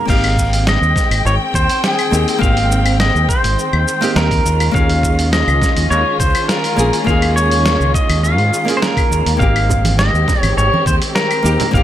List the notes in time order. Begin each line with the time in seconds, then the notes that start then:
0.05 G#1 D#3 G#3 A#3 C4 G5, kick, crash
0.10 D#4 G4 F5, shaker
0.24 open hi-hat, claves
0.37 kick, shaker
0.53 open hi-hat, shaker
0.67 D#5, snare, shaker
0.81 D#2, shaker
0.96 kick, snare, shaker
1.11 G#1, open hi-hat, claves, shaker
1.25 G#1 C#5, shaker
1.54 D#2 C5, kick, shaker
1.70 open hi-hat, shaker
1.84 G#4, snare, shaker
1.99 open hi-hat, claves, shaker
2.11 D#2 A#3 C4 D#4 G4, shaker
2.28 open hi-hat, shaker
2.38 G#1 A#3 C4 D#4 F5, kick
2.43 G4, shaker
2.57 open hi-hat
2.72 shaker
2.86 open hi-hat, claves, shaker
3.00 D#5, snare, shaker
3.15 D#2, shaker
3.29 C5, kick, shaker
3.44 G#1, open hi-hat, shaker
3.59 shaker
3.73 D#2, claves
3.88 shaker
4.01 A#3 C4 D#4 G4, open hi-hat, shaker
4.16 D#2 A#4, snare, shaker
4.31 kick, open hi-hat, shaker
4.45 D#2 C#4 F4, shaker
4.60 open hi-hat, claves, shaker
4.71 D#2 A#3 C#4 F4 F5, kick
4.76 G#4, shaker
4.90 open hi-hat
5.03 kick, shaker
5.19 open hi-hat, shaker
5.33 D#5, snare, shaker
5.47 C#2, claves, shaker
5.62 kick, snare, shaker
5.77 D#2, open hi-hat, shaker
5.91 D#2 C#5, shaker
6.20 C#2 C5, kick, shaker
6.35 open hi-hat, claves, shaker
6.48 A#4, snare, shaker
6.64 open hi-hat, shaker
6.76 A#1 A#3 C#4 F4 G#4, shaker
6.93 open hi-hat, shaker
7.04 D#2 A#3 C#4 F4 F5, kick, shaker
7.10 G#4
7.22 open hi-hat, claves
7.36 C#5, shaker
7.51 open hi-hat, shaker
7.66 snare, shaker
7.80 C#2, shaker
7.94 D#5, kick, shaker
8.09 D#2, open hi-hat, claves, shaker
8.24 F5, shaker
8.38 G#2, open hi-hat
8.54 shaker
8.65 A#3 C#4, open hi-hat
8.69 F4 G#4, shaker
8.77 C5
8.82 A#4, snare, shaker
8.97 kick, open hi-hat, claves, shaker
9.11 D#2, shaker
9.26 D#2, open hi-hat, shaker
9.37 G#1 A#3 C4 G4 F5, kick
9.41 D#4 G4, shaker
9.56 open hi-hat, claves
9.69 kick, low conga, shaker
9.85 open hi-hat, high conga, shaker
9.99 D#5, snare, shaker
10.14 D#2, shaker
10.28 kick, snare, low conga, shaker
10.41 G#1 C#5, open hi-hat, high conga, claves, shaker
10.57 G#1 C#5, shaker
10.74 high conga
10.86 D#2 C5, kick, shaker
11.02 open hi-hat, shaker
11.15 A#4, snare, shaker
11.31 open hi-hat, claves, shaker
11.42 D#2 A#3 C4 D#4 G4, shaker
11.60 open hi-hat, low conga, shaker
11.71 G#1 A#3 C4 F4 F5, kick, shaker
11.75 D#4 G4